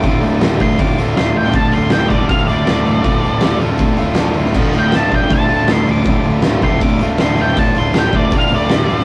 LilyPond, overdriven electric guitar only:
\new Staff \with { instrumentName = "Overdriven electric guitar" } { \clef bass \time 4/4 \key d \minor \tempo 4 = 159 <d, a, d a f'>8 <d a f'>8 <a, d a f'>8 <d, a, d a f'>8 <a, d a f'>8 <d, a, d a f'>8 <a, d a f'>8 <d a f'>8 | <d, a, d a f'>8 <d a f'>8 <a, d a f'>8 <d, a, d a f'>8 <a, d a f'>8 <d, a, d a f'>8 <a, d a f'>8 <d a f'>8 | <d, a, d a f'>8 <d a f'>8 <a, d a f'>8 <d, a, d a f'>8 <a, d a f'>8 <d, a, d a f'>8 <a, d a f'>8 <d a f'>8 | <d, a, d a f'>8 <d a f'>8 <a, d a f'>8 <d, a, d a f'>8 <a, d a f'>8 <d, a, d a f'>8 <a, d a f'>8 <d a f'>8 |
<d, a, d a f'>8 <d a f'>8 <a, d a f'>8 <d, a, d a f'>8 <a, d a f'>8 <d, a, d a f'>8 <a, d a f'>8 <d a f'>8 | <d, a, d a f'>8 <d a f'>8 <a, d a f'>8 <d, a, d a f'>8 <a, d a f'>8 <d, a, d a f'>8 <a, d a f'>8 <d a f'>8 | }